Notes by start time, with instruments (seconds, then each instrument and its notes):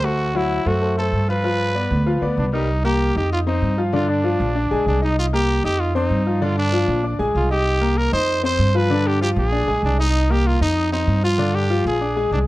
Already playing: upright bass D2
0.04 grand piano A3 A4 C5, trumpet F#4
0.35 grand piano F#3 F#4 F#5, trumpet E4
0.66 upright bass F#2, grand piano A3 A4 C5, trumpet F#4
0.82 grand piano A3 A4 C5
0.97 grand piano A3 A4 C5, trumpet A4
1.13 upright bass G2
1.28 grand piano F3 F4 F5, trumpet B4
1.44 grand piano F3 F4 F5
1.75 grand piano B3 B4 D5
1.91 upright bass D2
2.06 grand piano F3 F4 F5
2.21 upright bass D2, grand piano B3 B4 D5
2.37 upright bass C2, trumpet D4
2.53 grand piano G3 G4 A#4, trumpet D#4
2.84 grand piano A#3 A#4 A#5, trumpet G4
3.15 upright bass F2, grand piano D#4 D#5 D#6, trumpet G4
3.32 trumpet F4
3.47 grand piano C4 C5 C6, trumpet D#4
3.62 upright bass G2
3.78 grand piano F3 F4 F5
3.93 grand piano D3 D4 D5, trumpet F4
4.09 trumpet D4
4.24 grand piano F3 F4 F5
4.40 upright bass A#1
4.55 grand piano D4 D5 D6
4.71 upright bass A#1, grand piano G#3 G#4 G#5
4.86 upright bass C2, trumpet D4
5.02 grand piano D#4 D#5 D#6, trumpet D#4
5.19 trumpet F4
5.33 grand piano A#3 A#4 A#5, trumpet G4
5.64 upright bass F2, grand piano D#4 D#5 D#6, trumpet G4
5.80 trumpet F4
5.95 grand piano C4 C5 C6, trumpet D#4
6.10 upright bass G2
6.26 grand piano F3 F4 F5
6.41 grand piano D3 D4 D5, trumpet F4
6.58 trumpet D4
6.73 grand piano F3 F4 F5
6.88 upright bass A#1
7.03 grand piano D4 D5 D6
7.19 upright bass A#1, grand piano G#3 G#4 G#5
7.35 upright bass C2, trumpet F4
7.50 grand piano D#4 D#5 D#6, trumpet G4
7.81 grand piano A#3 A#4 A#5
7.97 trumpet A#4
8.12 upright bass F2, grand piano D#4 D#5 D#6, trumpet C5
8.43 grand piano C4 C5 C6, trumpet C5
8.59 upright bass G2
8.75 grand piano F3 F4 F5, trumpet B4
8.90 grand piano D3 D4 D5
9.07 trumpet G4
9.21 grand piano F3 F4 F5, trumpet G4
9.36 upright bass A#1, trumpet G#4
9.52 grand piano D4 D5 D6
9.67 upright bass A#1, grand piano G#3 G#4 G#5
9.83 upright bass C2, trumpet D4
9.99 grand piano D#4 D#5 D#6, trumpet D#4
10.30 grand piano A#3 A#4 A#5, trumpet G4
10.47 trumpet F4
10.61 upright bass F2, grand piano D#4 D#5 D#6, trumpet D#4
10.92 grand piano C4 C5 C6, trumpet D#4
11.07 upright bass G2
11.23 grand piano F3 F4 F5, trumpet F4
11.38 grand piano D3 D4 D5
11.55 trumpet G4
11.70 grand piano F3 F4 F5
11.85 upright bass A#1, trumpet G#4
12.01 grand piano D4 D5 D6
12.16 grand piano G#3 G#4 G#5
12.31 upright bass C2, trumpet D4